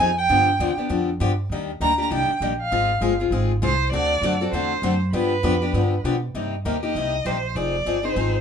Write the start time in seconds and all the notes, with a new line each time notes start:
Already playing: G#5
0.00 F2 G#4
0.18 G5
0.29 G2 D3 F3 B3 D4 G4
0.59 D#2 D3 F3 B3 D4 G4
0.77 B3 D4 G4, muted upright bass stroke
0.89 F2 D3 F3 B3 D4 G4
1.20 G2 D3 F3 B3 D4 G4
1.50 D#2 D#3 G3 A#3 D4 G4
1.80 D2 D#3 G3 A#3 D4 G4 A#5
1.98 A#3 D4 G4 A#5
2.11 C2 D#3 G3 A#3 D4 G4 G5
2.28 muted upright bass stroke
2.41 A#1 D#3 G3 A#3 D4 G4
2.61 F5
2.71 G#1 G#3 C4 F4 G#4
3.01 G1 G#3 C4 F4 G#4
3.20 C4 F4 G#4
3.31 G#1 G#3 C4 F4 G#4
3.62 C2 G#3 C4 F4 G#4 C5
3.92 D2 D3 A3 C4 F#4 A4 D5
4.22 F#2 D3 A3 C4 F#4 A4
4.41 C4 F#4 A4
4.52 E2 D3 A3 C4 F#4 A4 C5
4.82 F#2 D3 A3 C4 F#4 A4
5.12 G2 D3 F3 B3 D4 G4 B4
5.43 F2 D3 F3 B3 D4 G4
5.62 B3 D4 G4
5.73 G2 D3 F3 B3 D4 G4
6.04 B2 D3 F3 B3 D4 G4
6.34 G2 C3 G3 A#3 D#4 G4
6.65 D#2 C3 G3 A#3 D#4 G4 A#4
6.83 A#3 D#4 G4 D#5
6.95 C2 C3 G3 A#3 D#4 G4
7.25 A#1 C3 G3 A#3 D#4 G4 C5
7.55 F1 F3 C4 D#4 G#4 D5
7.86 G1 F3 C4 D#4 G#4
8.03 C4 D#4 G#4 C5
8.16 G#1 F3 C4 D#4 G#4